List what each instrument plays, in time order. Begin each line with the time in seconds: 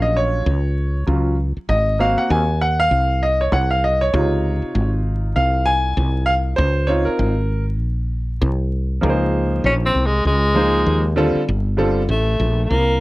Already playing: fretless electric bass A#1, grand piano F#3 C#4 F4
0.02 grand piano D#5
0.17 grand piano C#5
0.46 fretless electric bass C#2
1.07 fretless electric bass C#2, grand piano F#3 C#4 F4
1.57 muted fretless electric bass stroke
1.69 fretless electric bass G#1, grand piano D#5
1.99 grand piano A#3 C4 F#4 F5
2.18 grand piano F#5, muted fretless electric bass stroke
2.30 fretless electric bass D#2, grand piano G#5
2.61 grand piano F#5
2.80 grand piano F5
2.91 fretless electric bass C2
3.23 grand piano D#5
3.41 grand piano C#5
3.52 fretless electric bass C2, grand piano F#5
3.71 grand piano F5
3.84 grand piano D#5
4.01 grand piano C#5
4.13 fretless electric bass C#2, grand piano C3 D#4 F4
4.62 muted fretless electric bass stroke
4.75 fretless electric bass G#1
5.36 fretless electric bass C2, grand piano F5
5.66 grand piano G#5
5.97 fretless electric bass C2
6.26 grand piano F5
6.56 fretless electric bass C#2, grand piano C5
6.87 grand piano C4 D#4 F4 C#5
7.05 grand piano A#4, muted fretless electric bass stroke
7.19 fretless electric bass G#1
7.81 fretless electric bass A#1
8.42 fretless electric bass C2
9.01 fretless electric bass C#2, grand piano F3 A#3 D#4 G#4 A#4
9.10 grand piano C5
9.64 fretless electric bass A#1, tenor saxophone C#4
9.86 tenor saxophone C4
9.95 fretless electric bass C2
10.06 tenor saxophone G#3
10.25 fretless electric bass C#2, tenor saxophone G#3
10.55 grand piano F3 A#3 D#4 G#4 C5
10.86 fretless electric bass D#2
11.16 grand piano D3 G3 C4 F4 A4
11.35 muted fretless electric bass stroke
11.48 fretless electric bass G1
11.77 grand piano D3 G3 C4 F4 A4
12.09 fretless electric bass A1, tenor saxophone A3
12.40 fretless electric bass A#1
12.65 tenor saxophone A3
12.70 fretless electric bass C2, tenor saxophone A#3